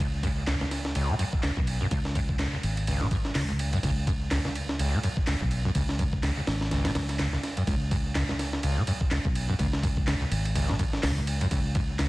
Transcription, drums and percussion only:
0.23 kick medium
0.23 ride medium
0.47 snare loud
0.47 clap loud
0.47 ride medium
0.61 snare soft
0.71 snare soft
0.71 ride medium
0.85 snare medium
0.95 ride medium
1.19 ride medium
1.33 kick medium
1.43 snare loud
1.43 clap loud
1.43 ride medium
1.57 kick medium
1.67 ride medium
1.91 kick loud
1.91 ride medium
2.05 snare medium
2.15 kick medium
2.15 ride medium
2.29 kick medium
2.39 snare loud
2.39 clap loud
2.39 ride medium
2.63 ride medium
2.77 ride soft
2.87 ride medium
3.01 snare soft
3.11 kick medium
3.11 ride medium
3.25 snare medium
3.35 snare loud
3.35 clap loud
3.35 open hi-hat medium
3.59 ride medium
3.73 ride soft
3.83 kick loud
3.83 ride medium
4.07 kick medium
4.07 ride medium
4.31 snare loud
4.31 clap loud
4.31 ride medium
4.45 snare soft
4.55 ride medium
4.69 snare medium
4.79 ride medium
5.03 ride medium
5.17 kick medium
5.27 snare loud
5.27 clap loud
5.27 ride medium
5.41 kick medium
5.51 ride medium
5.75 kick loud
5.75 ride medium
5.89 snare medium
5.99 kick medium
5.99 ride medium
6.13 kick medium
6.23 snare loud
6.23 clap loud
6.23 ride medium
6.47 snare loud
6.47 ride medium
6.61 snare soft
6.71 snare soft
6.71 ride medium
6.85 snare loud
6.85 ride medium
6.95 snare loud
6.95 ride medium
7.09 snare soft
7.09 ride medium
7.19 snare loud
7.19 clap loud
7.19 ride medium
7.33 snare soft
7.43 snare soft
7.43 ride medium
7.57 ride soft
7.67 kick loud
7.67 ride medium
7.91 kick medium
7.91 ride medium
8.15 snare loud
8.15 clap loud
8.15 ride medium
8.29 snare soft
8.39 snare soft
8.39 ride medium
8.53 snare medium
8.63 ride medium
8.87 ride medium
9.01 kick medium
9.11 snare loud
9.11 clap loud
9.11 ride medium
9.25 kick medium
9.35 ride medium
9.59 kick loud
9.59 ride medium
9.73 snare medium
9.83 kick medium
9.83 ride medium
9.97 kick medium
10.07 snare loud
10.07 clap loud
10.07 ride medium
10.32 ride medium
10.45 ride soft
10.55 ride medium
10.69 snare medium
10.79 kick medium
10.79 ride medium
10.93 snare medium
11.03 snare loud
11.03 clap loud
11.03 open hi-hat medium
11.27 ride medium
11.41 ride soft
11.51 kick loud
11.51 ride medium
11.75 kick medium
11.75 ride medium
11.99 snare loud
11.99 clap loud
11.99 ride medium

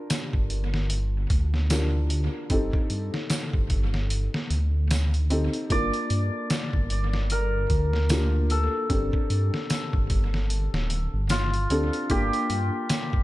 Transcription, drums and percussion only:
0.10 snare loud
0.10 closed hi-hat medium
0.10 tambourine medium
0.33 kick medium
0.50 closed hi-hat medium
0.74 snare soft
0.90 closed hi-hat medium
1.30 kick medium
1.30 closed hi-hat medium
1.54 snare soft
1.70 snare loud
1.70 closed hi-hat medium
1.70 tambourine medium
2.10 closed hi-hat medium
2.50 kick medium
2.50 closed hi-hat medium
2.73 kick medium
2.90 closed hi-hat medium
3.14 snare soft
3.30 snare loud
3.30 closed hi-hat medium
3.30 tambourine medium
3.53 kick medium
3.70 kick medium
3.70 closed hi-hat medium
3.94 snare soft
4.10 closed hi-hat medium
4.34 snare medium
4.50 closed hi-hat medium
4.91 snare loud
4.91 closed hi-hat medium
4.91 tambourine medium
5.14 closed hi-hat soft
5.30 closed hi-hat medium
5.53 closed hi-hat soft
5.70 kick medium
5.70 closed hi-hat medium
5.94 closed hi-hat soft
6.10 closed hi-hat medium
6.50 snare loud
6.50 closed hi-hat medium
6.50 tambourine medium
6.73 kick medium
6.90 closed hi-hat medium
7.13 snare soft
7.30 closed hi-hat medium
7.70 kick medium
7.70 closed hi-hat medium
7.93 snare soft
8.09 snare loud
8.09 closed hi-hat medium
8.09 tambourine medium
8.50 closed hi-hat medium
8.90 kick medium
8.90 closed hi-hat medium
9.13 kick medium
9.30 closed hi-hat medium
9.54 snare soft
9.70 snare loud
9.70 closed hi-hat medium
9.70 tambourine medium
9.93 kick medium
10.10 kick medium
10.10 closed hi-hat medium
10.34 snare soft
10.50 closed hi-hat medium
10.74 snare medium
10.90 closed hi-hat medium
11.29 snare loud
11.29 closed hi-hat medium
11.29 tambourine medium
11.54 closed hi-hat soft
11.70 closed hi-hat medium
11.93 closed hi-hat soft
12.10 kick loud
12.10 closed hi-hat medium
12.33 closed hi-hat soft
12.50 closed hi-hat medium
12.89 snare loud
12.89 closed hi-hat medium
12.89 tambourine medium
13.13 kick medium

